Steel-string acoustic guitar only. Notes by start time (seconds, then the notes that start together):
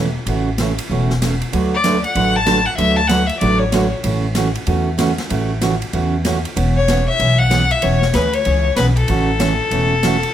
0.27 C#3 E3 A3 C#4 F#4
0.60 C#3 E3 A3 C#4 F#4
0.90 C#3 E3 A3 C#4 F#4
1.22 C#3 E3 A3 C#4 F#4
1.52 D3 F#3 A3 D4 F#4 B4
1.84 D3 F#3 A3 D4 F#4 B4
2.15 D3 F#3 A3 D4 F#4 B4
2.46 D3 F#3 A3 D4 F#4 B4
2.78 D3 F#3 A3 D4 F#4 B4
3.09 D3 F#3 A3 D4 F#4 B4
3.41 D3 F#3 A3 D4 F#4 B4
3.73 D3 F#3 A3 D4 F#4 B4
4.04 C#3 E3 A3 C#4 F#4
4.35 C#3 E3 A3 C#4 F#4
4.67 C#3 E3 A3 C#4 F#4
4.98 C#3 E3 A3 C#4 F#4
5.29 C#3 E3 A3 C#4 F#4
5.61 C#3 E3 A3 C#4 F#4
5.93 C#3 E3 A3 C#4 F#4
6.25 C#3 E3 A3 C#4 F#4
6.56 E3 B3 C#4 G#4
6.88 E3 B3 C#4 G#4
7.19 E3 B3 C#4 G#4
7.50 E3 B3 C#4 G#4
7.82 E3 B3 C#4 G#4
8.14 E3 B3 C#4 G#4
8.46 E3 B3 C#4 G#4
8.77 E3 B3 C#4 G#4
9.09 C#3 E3 A3 C#4 F#4
9.39 C#3 E3 A3 C#4 F#4
9.71 C#3 E3 A3 C#4 F#4
10.04 C#3 E3 A3 C#4 F#4